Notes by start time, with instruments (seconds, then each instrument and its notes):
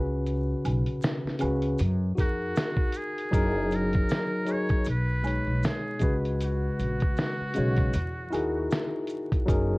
Already playing: upright bass C#2, tine electric piano C#3 C#4 F#4 B4
0.26 closed hi-hat, maracas
0.65 upright bass B1, closed hi-hat, high woodblock, maracas
0.86 closed hi-hat
1.02 finger snap, snare, closed hi-hat, maracas
1.25 muted upright bass stroke, snare
1.39 upright bass C#2, tine electric piano C#3 C#4 F#4 B4, closed hi-hat, high woodblock, maracas
1.62 closed hi-hat
1.78 upright bass F#2, closed hi-hat, maracas
2.15 upright bass F2, tine electric piano D#4 F#4 G#4 A#4, kick, maracas
2.19 muted trumpet F#4, closed hi-hat
2.56 finger snap, snare, closed hi-hat, maracas
2.77 kick
2.92 closed hi-hat, maracas
2.97 muted trumpet G#4
3.18 closed hi-hat
3.31 upright bass F#1, tine electric piano F#3 D#4 G#4 A#4, kick, closed hi-hat, maracas
3.71 muted trumpet A#4, closed hi-hat, maracas
3.93 kick, closed hi-hat
4.09 finger snap, snare, closed hi-hat, maracas
4.45 tine electric piano F#3 D#4 G#4 C#5, closed hi-hat, maracas
4.52 muted trumpet C#5
4.69 kick, closed hi-hat
4.85 upright bass B1, closed hi-hat, maracas
4.90 muted trumpet B4
5.22 tine electric piano B2 G#3 D#4 C#5, high woodblock, maracas
5.27 closed hi-hat
5.47 upright bass B1
5.63 finger snap, snare, closed hi-hat, maracas
5.67 muted trumpet G#4
5.99 upright bass C#2, tine electric piano C#3 G#3 F#4 B4, kick, closed hi-hat, maracas
6.25 closed hi-hat
6.41 muted trumpet F#4, closed hi-hat, maracas
6.79 upright bass A#1, closed hi-hat, maracas
7.00 kick, closed hi-hat
7.17 finger snap, snare, closed hi-hat, maracas
7.40 muted upright bass stroke
7.54 upright bass B1, tine electric piano C#3 G#3 F#4, closed hi-hat, maracas
7.58 tine electric piano C#5
7.76 kick, closed hi-hat
7.93 upright bass E2, closed hi-hat, maracas
8.30 upright bass D#2, tine electric piano D#4 E4 F#4 G#4 A#4, high woodblock, maracas
8.34 closed hi-hat
8.71 finger snap, snare, closed hi-hat, maracas
9.07 closed hi-hat, maracas
9.32 kick, closed hi-hat
9.46 upright bass F#1, tine electric piano F#3 D#4 G#4 A#4, kick, closed hi-hat, maracas